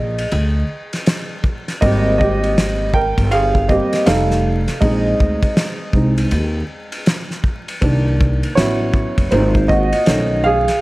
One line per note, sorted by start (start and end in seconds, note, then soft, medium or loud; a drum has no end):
0.00 0.23 A#1 medium
0.00 1.41 G#4 medium
0.00 1.40 D#5 medium
0.18 ride medium
0.31 0.61 D2 loud
0.31 ride medium
0.93 snare soft
0.93 ride medium
1.06 snare loud
1.06 hi-hat pedal medium
1.06 ride medium
1.44 kick loud
1.68 snare soft
1.68 ride medium
1.81 3.14 G#1 loud
1.81 2.90 G3 medium
1.81 2.91 A#3 medium
1.81 2.91 C4 medium
1.81 2.17 G4 medium
1.81 2.17 D#5 loud
1.81 kick loud
1.81 ride medium
2.18 2.91 G4 medium
2.18 2.96 D#5 loud
2.18 kick medium
2.44 ride soft
2.58 snare loud
2.58 hi-hat pedal medium
2.58 ride medium
2.94 3.30 A#4 medium
2.94 3.33 G5 loud
2.94 kick medium
3.18 3.76 G1 medium
3.18 kick medium
3.18 ride medium
3.31 3.68 G#4 medium
3.31 3.70 F5 loud
3.31 ride medium
3.55 kick medium
3.69 4.03 G3 soft
3.69 4.03 A#3 soft
3.69 4.04 C4 medium
3.69 4.05 G4 medium
3.69 4.08 D#5 medium
3.69 kick medium
3.93 snare soft
3.93 ride medium
4.06 4.65 F1 medium
4.06 4.60 G3 medium
4.06 4.60 A3 medium
4.06 4.60 D#4 medium
4.06 4.78 A4 medium
4.06 4.78 F5 loud
4.06 snare loud
4.06 hi-hat pedal soft
4.06 ride medium
4.31 snare soft
4.68 snare soft
4.68 ride medium
4.81 5.11 A#1 loud
4.81 5.92 G#3 medium
4.81 5.93 C4 soft
4.81 5.93 D#4 medium
4.81 7.03 G#4 medium
4.81 7.02 D#5 medium
4.81 kick loud
4.81 ride medium
5.20 5.38 D2 medium
5.20 kick medium
5.43 kick loud
5.43 ride medium
5.57 snare loud
5.57 hi-hat pedal soft
5.57 ride medium
5.93 6.23 C2 medium
5.93 6.28 G#3 soft
5.93 6.28 C4 soft
5.93 6.28 D#4 medium
5.93 kick loud
6.18 ride medium
6.31 6.61 D#2 loud
6.31 ride medium
6.92 ride medium
7.06 snare loud
7.06 hi-hat pedal medium
7.06 ride medium
7.31 snare soft
7.44 kick loud
7.68 ride medium
7.81 8.41 C2 medium
7.81 8.53 D#3 medium
7.81 8.53 A#3 soft
7.81 8.54 D4 medium
7.81 kick loud
7.81 ride medium
8.21 kick loud
8.43 ride medium
8.55 9.04 A1 medium
8.55 9.28 F#3 medium
8.55 9.28 B3 soft
8.55 9.29 C#4 medium
8.55 9.28 E4 medium
8.55 9.34 C#5 medium
8.55 snare loud
8.55 hi-hat pedal medium
8.55 ride medium
8.94 kick medium
9.18 9.29 F#1 medium
9.18 kick medium
9.18 ride medium
9.31 9.90 G#1 loud
9.31 10.03 A#3 soft
9.31 10.04 C4 medium
9.31 9.68 D#4 medium
9.31 10.03 F4 medium
9.31 9.70 C5 medium
9.31 ride medium
9.55 kick medium
9.68 10.41 F#4 medium
9.68 10.46 D#5 medium
9.68 kick medium
9.93 ride medium
10.06 10.66 B1 medium
10.06 10.60 D#3 medium
10.06 10.60 A3 medium
10.06 10.61 C#4 medium
10.06 snare loud
10.06 hi-hat pedal medium
10.06 ride medium
10.44 10.81 G#4 medium
10.44 10.81 F5 loud
10.68 snare soft
10.68 ride medium